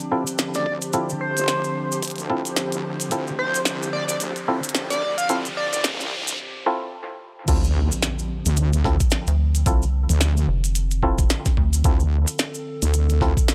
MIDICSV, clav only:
0, 0, Header, 1, 2, 480
1, 0, Start_track
1, 0, Key_signature, -1, "minor"
1, 0, Tempo, 545455
1, 823, Time_signature, 4, 2, 24, 8
1, 11920, End_track
2, 0, Start_track
2, 0, Title_t, "Clav"
2, 0, Program_c, 0, 7
2, 102, Note_on_c, 0, 64, 66
2, 103, Note_on_c, 0, 60, 73
2, 103, Note_on_c, 0, 69, 82
2, 104, Note_on_c, 0, 65, 66
2, 206, Note_off_c, 0, 60, 0
2, 206, Note_off_c, 0, 64, 0
2, 206, Note_off_c, 0, 69, 0
2, 207, Note_off_c, 0, 65, 0
2, 824, Note_on_c, 0, 60, 76
2, 825, Note_on_c, 0, 64, 73
2, 825, Note_on_c, 0, 65, 73
2, 825, Note_on_c, 0, 69, 88
2, 982, Note_off_c, 0, 60, 0
2, 982, Note_off_c, 0, 64, 0
2, 982, Note_off_c, 0, 65, 0
2, 982, Note_off_c, 0, 69, 0
2, 2023, Note_on_c, 0, 64, 89
2, 2023, Note_on_c, 0, 65, 87
2, 2023, Note_on_c, 0, 69, 107
2, 2024, Note_on_c, 0, 60, 101
2, 2719, Note_off_c, 0, 60, 0
2, 2719, Note_off_c, 0, 64, 0
2, 2719, Note_off_c, 0, 65, 0
2, 2719, Note_off_c, 0, 69, 0
2, 2743, Note_on_c, 0, 69, 78
2, 2744, Note_on_c, 0, 60, 76
2, 2744, Note_on_c, 0, 65, 65
2, 2745, Note_on_c, 0, 64, 68
2, 2901, Note_off_c, 0, 69, 0
2, 2902, Note_off_c, 0, 60, 0
2, 2902, Note_off_c, 0, 64, 0
2, 2902, Note_off_c, 0, 65, 0
2, 3943, Note_on_c, 0, 65, 68
2, 3943, Note_on_c, 0, 69, 82
2, 3944, Note_on_c, 0, 60, 76
2, 3944, Note_on_c, 0, 64, 71
2, 4046, Note_off_c, 0, 65, 0
2, 4046, Note_off_c, 0, 69, 0
2, 4047, Note_off_c, 0, 60, 0
2, 4047, Note_off_c, 0, 64, 0
2, 4660, Note_on_c, 0, 64, 76
2, 4660, Note_on_c, 0, 69, 94
2, 4661, Note_on_c, 0, 60, 86
2, 4661, Note_on_c, 0, 65, 77
2, 4820, Note_off_c, 0, 60, 0
2, 4820, Note_off_c, 0, 64, 0
2, 4820, Note_off_c, 0, 65, 0
2, 4820, Note_off_c, 0, 69, 0
2, 5863, Note_on_c, 0, 64, 96
2, 5864, Note_on_c, 0, 60, 98
2, 5864, Note_on_c, 0, 65, 92
2, 5864, Note_on_c, 0, 69, 113
2, 6559, Note_off_c, 0, 64, 0
2, 6559, Note_off_c, 0, 69, 0
2, 6560, Note_off_c, 0, 60, 0
2, 6560, Note_off_c, 0, 65, 0
2, 6585, Note_on_c, 0, 64, 70
2, 6585, Note_on_c, 0, 65, 69
2, 6586, Note_on_c, 0, 60, 74
2, 6586, Note_on_c, 0, 69, 82
2, 6742, Note_off_c, 0, 64, 0
2, 6742, Note_off_c, 0, 65, 0
2, 6742, Note_off_c, 0, 69, 0
2, 6743, Note_off_c, 0, 60, 0
2, 7788, Note_on_c, 0, 60, 79
2, 7788, Note_on_c, 0, 64, 68
2, 7788, Note_on_c, 0, 65, 72
2, 7788, Note_on_c, 0, 69, 84
2, 7889, Note_off_c, 0, 60, 0
2, 7889, Note_off_c, 0, 64, 0
2, 7889, Note_off_c, 0, 65, 0
2, 7889, Note_off_c, 0, 69, 0
2, 8507, Note_on_c, 0, 60, 79
2, 8507, Note_on_c, 0, 69, 86
2, 8508, Note_on_c, 0, 64, 75
2, 8508, Note_on_c, 0, 65, 75
2, 8663, Note_off_c, 0, 60, 0
2, 8663, Note_off_c, 0, 65, 0
2, 8663, Note_off_c, 0, 69, 0
2, 8664, Note_off_c, 0, 64, 0
2, 9705, Note_on_c, 0, 69, 108
2, 9706, Note_on_c, 0, 60, 99
2, 9706, Note_on_c, 0, 64, 90
2, 9707, Note_on_c, 0, 65, 90
2, 10400, Note_off_c, 0, 69, 0
2, 10401, Note_off_c, 0, 60, 0
2, 10401, Note_off_c, 0, 64, 0
2, 10401, Note_off_c, 0, 65, 0
2, 10430, Note_on_c, 0, 64, 71
2, 10430, Note_on_c, 0, 65, 70
2, 10430, Note_on_c, 0, 69, 83
2, 10431, Note_on_c, 0, 60, 74
2, 10584, Note_off_c, 0, 65, 0
2, 10585, Note_off_c, 0, 60, 0
2, 10585, Note_off_c, 0, 64, 0
2, 10585, Note_off_c, 0, 69, 0
2, 11630, Note_on_c, 0, 60, 80
2, 11630, Note_on_c, 0, 69, 86
2, 11631, Note_on_c, 0, 64, 72
2, 11631, Note_on_c, 0, 65, 70
2, 11730, Note_off_c, 0, 60, 0
2, 11730, Note_off_c, 0, 64, 0
2, 11730, Note_off_c, 0, 65, 0
2, 11730, Note_off_c, 0, 69, 0
2, 11920, End_track
0, 0, End_of_file